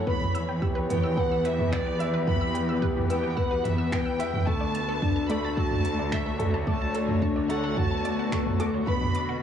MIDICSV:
0, 0, Header, 1, 8, 480
1, 0, Start_track
1, 0, Tempo, 550459
1, 59, Time_signature, 4, 2, 24, 8
1, 8219, End_track
2, 0, Start_track
2, 0, Title_t, "Synth arpeggio sound"
2, 0, Program_c, 0, 84
2, 60, Note_on_c, 0, 71, 99
2, 94, Note_off_c, 0, 71, 0
2, 301, Note_on_c, 0, 88, 78
2, 335, Note_off_c, 0, 88, 0
2, 424, Note_on_c, 0, 79, 80
2, 479, Note_off_c, 0, 79, 0
2, 541, Note_on_c, 0, 88, 81
2, 626, Note_off_c, 0, 88, 0
2, 655, Note_on_c, 0, 71, 103
2, 692, Note_off_c, 0, 71, 0
2, 901, Note_on_c, 0, 88, 77
2, 935, Note_off_c, 0, 88, 0
2, 1023, Note_on_c, 0, 79, 81
2, 1079, Note_off_c, 0, 79, 0
2, 1146, Note_on_c, 0, 88, 76
2, 1229, Note_off_c, 0, 88, 0
2, 1262, Note_on_c, 0, 71, 103
2, 1295, Note_off_c, 0, 71, 0
2, 1507, Note_on_c, 0, 88, 85
2, 1538, Note_off_c, 0, 88, 0
2, 1622, Note_on_c, 0, 79, 72
2, 1678, Note_off_c, 0, 79, 0
2, 1746, Note_on_c, 0, 88, 74
2, 1829, Note_off_c, 0, 88, 0
2, 1862, Note_on_c, 0, 71, 102
2, 1895, Note_off_c, 0, 71, 0
2, 2102, Note_on_c, 0, 88, 75
2, 2135, Note_off_c, 0, 88, 0
2, 2220, Note_on_c, 0, 79, 75
2, 2277, Note_off_c, 0, 79, 0
2, 2344, Note_on_c, 0, 88, 82
2, 2428, Note_off_c, 0, 88, 0
2, 2460, Note_on_c, 0, 71, 109
2, 2494, Note_off_c, 0, 71, 0
2, 2703, Note_on_c, 0, 88, 78
2, 2736, Note_off_c, 0, 88, 0
2, 2820, Note_on_c, 0, 79, 76
2, 2877, Note_off_c, 0, 79, 0
2, 2937, Note_on_c, 0, 88, 81
2, 3025, Note_off_c, 0, 88, 0
2, 3060, Note_on_c, 0, 71, 98
2, 3094, Note_off_c, 0, 71, 0
2, 3299, Note_on_c, 0, 88, 77
2, 3334, Note_off_c, 0, 88, 0
2, 3420, Note_on_c, 0, 79, 84
2, 3477, Note_off_c, 0, 79, 0
2, 3536, Note_on_c, 0, 88, 71
2, 3624, Note_off_c, 0, 88, 0
2, 3660, Note_on_c, 0, 71, 98
2, 3694, Note_off_c, 0, 71, 0
2, 3896, Note_on_c, 0, 81, 84
2, 3932, Note_off_c, 0, 81, 0
2, 4017, Note_on_c, 0, 74, 77
2, 4076, Note_off_c, 0, 74, 0
2, 4142, Note_on_c, 0, 81, 74
2, 4227, Note_off_c, 0, 81, 0
2, 4261, Note_on_c, 0, 69, 108
2, 4295, Note_off_c, 0, 69, 0
2, 4499, Note_on_c, 0, 81, 79
2, 4534, Note_off_c, 0, 81, 0
2, 4628, Note_on_c, 0, 74, 83
2, 4681, Note_off_c, 0, 74, 0
2, 4747, Note_on_c, 0, 81, 78
2, 4829, Note_off_c, 0, 81, 0
2, 4862, Note_on_c, 0, 69, 97
2, 4895, Note_off_c, 0, 69, 0
2, 5106, Note_on_c, 0, 81, 80
2, 5137, Note_off_c, 0, 81, 0
2, 5225, Note_on_c, 0, 74, 74
2, 5280, Note_off_c, 0, 74, 0
2, 5338, Note_on_c, 0, 81, 89
2, 5425, Note_off_c, 0, 81, 0
2, 5460, Note_on_c, 0, 69, 98
2, 5494, Note_off_c, 0, 69, 0
2, 5702, Note_on_c, 0, 81, 81
2, 5735, Note_off_c, 0, 81, 0
2, 5820, Note_on_c, 0, 74, 82
2, 5877, Note_off_c, 0, 74, 0
2, 5944, Note_on_c, 0, 81, 78
2, 6028, Note_off_c, 0, 81, 0
2, 6062, Note_on_c, 0, 69, 102
2, 6095, Note_off_c, 0, 69, 0
2, 6298, Note_on_c, 0, 81, 88
2, 6333, Note_off_c, 0, 81, 0
2, 6418, Note_on_c, 0, 74, 79
2, 6476, Note_off_c, 0, 74, 0
2, 6540, Note_on_c, 0, 81, 79
2, 6626, Note_off_c, 0, 81, 0
2, 6659, Note_on_c, 0, 69, 100
2, 6694, Note_off_c, 0, 69, 0
2, 6897, Note_on_c, 0, 81, 74
2, 6933, Note_off_c, 0, 81, 0
2, 7020, Note_on_c, 0, 74, 81
2, 7106, Note_off_c, 0, 74, 0
2, 7143, Note_on_c, 0, 78, 78
2, 7199, Note_off_c, 0, 78, 0
2, 7260, Note_on_c, 0, 85, 106
2, 7317, Note_off_c, 0, 85, 0
2, 7501, Note_on_c, 0, 86, 102
2, 7587, Note_off_c, 0, 86, 0
2, 7622, Note_on_c, 0, 73, 76
2, 7707, Note_off_c, 0, 73, 0
2, 7745, Note_on_c, 0, 71, 101
2, 7777, Note_off_c, 0, 71, 0
2, 7984, Note_on_c, 0, 86, 74
2, 8016, Note_off_c, 0, 86, 0
2, 8100, Note_on_c, 0, 78, 81
2, 8157, Note_off_c, 0, 78, 0
2, 8219, End_track
3, 0, Start_track
3, 0, Title_t, "Violin section"
3, 0, Program_c, 1, 48
3, 74, Note_on_c, 1, 83, 107
3, 514, Note_off_c, 1, 83, 0
3, 782, Note_on_c, 1, 79, 86
3, 1004, Note_off_c, 1, 79, 0
3, 1030, Note_on_c, 1, 78, 97
3, 1264, Note_on_c, 1, 76, 93
3, 1265, Note_off_c, 1, 78, 0
3, 1502, Note_off_c, 1, 76, 0
3, 1505, Note_on_c, 1, 74, 100
3, 1863, Note_off_c, 1, 74, 0
3, 1989, Note_on_c, 1, 83, 108
3, 2431, Note_off_c, 1, 83, 0
3, 2709, Note_on_c, 1, 79, 88
3, 2928, Note_off_c, 1, 79, 0
3, 2946, Note_on_c, 1, 78, 88
3, 3183, Note_off_c, 1, 78, 0
3, 3183, Note_on_c, 1, 76, 86
3, 3421, Note_off_c, 1, 76, 0
3, 3425, Note_on_c, 1, 79, 101
3, 3903, Note_off_c, 1, 79, 0
3, 3904, Note_on_c, 1, 81, 116
3, 4622, Note_off_c, 1, 81, 0
3, 4624, Note_on_c, 1, 83, 106
3, 4862, Note_off_c, 1, 83, 0
3, 4868, Note_on_c, 1, 81, 117
3, 5310, Note_off_c, 1, 81, 0
3, 5341, Note_on_c, 1, 76, 97
3, 5701, Note_off_c, 1, 76, 0
3, 5819, Note_on_c, 1, 81, 98
3, 6265, Note_off_c, 1, 81, 0
3, 6534, Note_on_c, 1, 78, 97
3, 6760, Note_off_c, 1, 78, 0
3, 6776, Note_on_c, 1, 81, 124
3, 7498, Note_off_c, 1, 81, 0
3, 7733, Note_on_c, 1, 83, 120
3, 8182, Note_off_c, 1, 83, 0
3, 8219, End_track
4, 0, Start_track
4, 0, Title_t, "String section"
4, 0, Program_c, 2, 48
4, 0, Note_on_c, 2, 52, 83
4, 0, Note_on_c, 2, 73, 84
4, 374, Note_on_c, 2, 71, 80
4, 394, Note_on_c, 2, 59, 83
4, 997, Note_on_c, 2, 67, 84
4, 1598, Note_off_c, 2, 73, 0
4, 3905, Note_off_c, 2, 52, 0
4, 3907, Note_on_c, 2, 50, 73
4, 3908, Note_off_c, 2, 67, 0
4, 4081, Note_on_c, 2, 57, 76
4, 4718, Note_off_c, 2, 71, 0
4, 4791, Note_off_c, 2, 59, 0
4, 4804, Note_on_c, 2, 66, 70
4, 5428, Note_on_c, 2, 73, 82
4, 7743, Note_off_c, 2, 57, 0
4, 7743, Note_off_c, 2, 73, 0
4, 8128, Note_on_c, 2, 59, 77
4, 8219, Note_off_c, 2, 50, 0
4, 8219, Note_off_c, 2, 59, 0
4, 8219, Note_off_c, 2, 66, 0
4, 8219, End_track
5, 0, Start_track
5, 0, Title_t, "Upright piano"
5, 0, Program_c, 3, 0
5, 0, Control_c, 3, 64, 127
5, 56, Note_on_c, 3, 59, 81
5, 70, Control_c, 3, 64, 0
5, 194, Note_off_c, 3, 59, 0
5, 216, Control_c, 3, 64, 127
5, 540, Note_on_c, 3, 67, 75
5, 768, Note_off_c, 3, 67, 0
5, 781, Note_on_c, 3, 59, 96
5, 1008, Note_off_c, 3, 59, 0
5, 1017, Note_on_c, 3, 71, 85
5, 1155, Note_off_c, 3, 71, 0
5, 1500, Note_on_c, 3, 59, 79
5, 1637, Note_off_c, 3, 59, 0
5, 1737, Note_on_c, 3, 76, 99
5, 1966, Note_off_c, 3, 76, 0
5, 1977, Note_on_c, 3, 59, 88
5, 2115, Note_off_c, 3, 59, 0
5, 2461, Note_on_c, 3, 67, 68
5, 2688, Note_off_c, 3, 67, 0
5, 2703, Note_on_c, 3, 59, 91
5, 2929, Note_off_c, 3, 59, 0
5, 2946, Note_on_c, 3, 71, 90
5, 3080, Note_off_c, 3, 71, 0
5, 3422, Note_on_c, 3, 59, 77
5, 3558, Note_off_c, 3, 59, 0
5, 3657, Note_on_c, 3, 76, 100
5, 3886, Note_off_c, 3, 76, 0
5, 3897, Note_on_c, 3, 57, 88
5, 3911, Control_c, 3, 64, 0
5, 4035, Note_off_c, 3, 57, 0
5, 4045, Control_c, 3, 64, 127
5, 4379, Note_on_c, 3, 62, 75
5, 4607, Note_off_c, 3, 62, 0
5, 4616, Note_on_c, 3, 57, 96
5, 4846, Note_off_c, 3, 57, 0
5, 4861, Note_on_c, 3, 66, 90
5, 4997, Note_off_c, 3, 66, 0
5, 5335, Note_on_c, 3, 57, 73
5, 5474, Note_off_c, 3, 57, 0
5, 5573, Note_on_c, 3, 69, 94
5, 5804, Note_off_c, 3, 69, 0
5, 5814, Note_on_c, 3, 57, 87
5, 5954, Note_off_c, 3, 57, 0
5, 6295, Note_on_c, 3, 62, 69
5, 6526, Note_off_c, 3, 62, 0
5, 6534, Note_on_c, 3, 57, 97
5, 6765, Note_off_c, 3, 57, 0
5, 6777, Note_on_c, 3, 66, 96
5, 6915, Note_off_c, 3, 66, 0
5, 7258, Note_on_c, 3, 57, 80
5, 7396, Note_off_c, 3, 57, 0
5, 7496, Note_on_c, 3, 69, 101
5, 7726, Note_off_c, 3, 69, 0
5, 7737, Note_on_c, 3, 59, 86
5, 7750, Control_c, 3, 64, 0
5, 7875, Note_off_c, 3, 59, 0
5, 7920, Control_c, 3, 64, 127
5, 8219, End_track
6, 0, Start_track
6, 0, Title_t, "Cello section"
6, 0, Program_c, 4, 48
6, 61, Note_on_c, 4, 40, 91
6, 3877, Note_off_c, 4, 40, 0
6, 3899, Note_on_c, 4, 38, 100
6, 7715, Note_off_c, 4, 38, 0
6, 7736, Note_on_c, 4, 47, 95
6, 8219, Note_off_c, 4, 47, 0
6, 8219, End_track
7, 0, Start_track
7, 0, Title_t, "Swell"
7, 0, Program_c, 5, 103
7, 6775, Note_on_c, 5, 60, 63
7, 7737, Note_off_c, 5, 60, 0
7, 8219, End_track
8, 0, Start_track
8, 0, Title_t, "Drums"
8, 61, Note_on_c, 9, 36, 104
8, 148, Note_off_c, 9, 36, 0
8, 185, Note_on_c, 9, 45, 62
8, 273, Note_off_c, 9, 45, 0
8, 305, Note_on_c, 9, 42, 63
8, 392, Note_off_c, 9, 42, 0
8, 541, Note_on_c, 9, 36, 108
8, 628, Note_off_c, 9, 36, 0
8, 787, Note_on_c, 9, 42, 67
8, 787, Note_on_c, 9, 45, 61
8, 874, Note_off_c, 9, 42, 0
8, 874, Note_off_c, 9, 45, 0
8, 1022, Note_on_c, 9, 36, 96
8, 1109, Note_off_c, 9, 36, 0
8, 1264, Note_on_c, 9, 42, 60
8, 1352, Note_off_c, 9, 42, 0
8, 1384, Note_on_c, 9, 45, 66
8, 1471, Note_off_c, 9, 45, 0
8, 1503, Note_on_c, 9, 36, 105
8, 1504, Note_on_c, 9, 26, 67
8, 1590, Note_off_c, 9, 36, 0
8, 1591, Note_off_c, 9, 26, 0
8, 1745, Note_on_c, 9, 42, 60
8, 1833, Note_off_c, 9, 42, 0
8, 1983, Note_on_c, 9, 36, 107
8, 1985, Note_on_c, 9, 45, 74
8, 2070, Note_off_c, 9, 36, 0
8, 2072, Note_off_c, 9, 45, 0
8, 2224, Note_on_c, 9, 42, 65
8, 2311, Note_off_c, 9, 42, 0
8, 2462, Note_on_c, 9, 36, 96
8, 2549, Note_off_c, 9, 36, 0
8, 2586, Note_on_c, 9, 45, 58
8, 2673, Note_off_c, 9, 45, 0
8, 2705, Note_on_c, 9, 42, 62
8, 2792, Note_off_c, 9, 42, 0
8, 2942, Note_on_c, 9, 36, 102
8, 3029, Note_off_c, 9, 36, 0
8, 3185, Note_on_c, 9, 42, 61
8, 3185, Note_on_c, 9, 45, 63
8, 3272, Note_off_c, 9, 42, 0
8, 3272, Note_off_c, 9, 45, 0
8, 3421, Note_on_c, 9, 36, 98
8, 3422, Note_on_c, 9, 26, 74
8, 3508, Note_off_c, 9, 36, 0
8, 3509, Note_off_c, 9, 26, 0
8, 3661, Note_on_c, 9, 42, 62
8, 3748, Note_off_c, 9, 42, 0
8, 3781, Note_on_c, 9, 45, 67
8, 3868, Note_off_c, 9, 45, 0
8, 3899, Note_on_c, 9, 36, 103
8, 3986, Note_off_c, 9, 36, 0
8, 4139, Note_on_c, 9, 42, 62
8, 4226, Note_off_c, 9, 42, 0
8, 4378, Note_on_c, 9, 36, 96
8, 4380, Note_on_c, 9, 45, 64
8, 4465, Note_off_c, 9, 36, 0
8, 4467, Note_off_c, 9, 45, 0
8, 4618, Note_on_c, 9, 42, 66
8, 4705, Note_off_c, 9, 42, 0
8, 4857, Note_on_c, 9, 36, 102
8, 4944, Note_off_c, 9, 36, 0
8, 4976, Note_on_c, 9, 45, 65
8, 5063, Note_off_c, 9, 45, 0
8, 5098, Note_on_c, 9, 42, 59
8, 5186, Note_off_c, 9, 42, 0
8, 5337, Note_on_c, 9, 36, 95
8, 5338, Note_on_c, 9, 26, 77
8, 5424, Note_off_c, 9, 36, 0
8, 5425, Note_off_c, 9, 26, 0
8, 5579, Note_on_c, 9, 42, 57
8, 5579, Note_on_c, 9, 45, 66
8, 5667, Note_off_c, 9, 42, 0
8, 5667, Note_off_c, 9, 45, 0
8, 5817, Note_on_c, 9, 36, 108
8, 5904, Note_off_c, 9, 36, 0
8, 6057, Note_on_c, 9, 42, 63
8, 6144, Note_off_c, 9, 42, 0
8, 6177, Note_on_c, 9, 45, 69
8, 6264, Note_off_c, 9, 45, 0
8, 6295, Note_on_c, 9, 36, 98
8, 6383, Note_off_c, 9, 36, 0
8, 6539, Note_on_c, 9, 42, 65
8, 6626, Note_off_c, 9, 42, 0
8, 6775, Note_on_c, 9, 36, 102
8, 6776, Note_on_c, 9, 45, 68
8, 6862, Note_off_c, 9, 36, 0
8, 6864, Note_off_c, 9, 45, 0
8, 7020, Note_on_c, 9, 42, 57
8, 7107, Note_off_c, 9, 42, 0
8, 7255, Note_on_c, 9, 36, 97
8, 7257, Note_on_c, 9, 26, 73
8, 7342, Note_off_c, 9, 36, 0
8, 7345, Note_off_c, 9, 26, 0
8, 7381, Note_on_c, 9, 45, 69
8, 7468, Note_off_c, 9, 45, 0
8, 7497, Note_on_c, 9, 42, 60
8, 7584, Note_off_c, 9, 42, 0
8, 7736, Note_on_c, 9, 36, 113
8, 7823, Note_off_c, 9, 36, 0
8, 7859, Note_on_c, 9, 45, 66
8, 7947, Note_off_c, 9, 45, 0
8, 7975, Note_on_c, 9, 42, 66
8, 8063, Note_off_c, 9, 42, 0
8, 8219, End_track
0, 0, End_of_file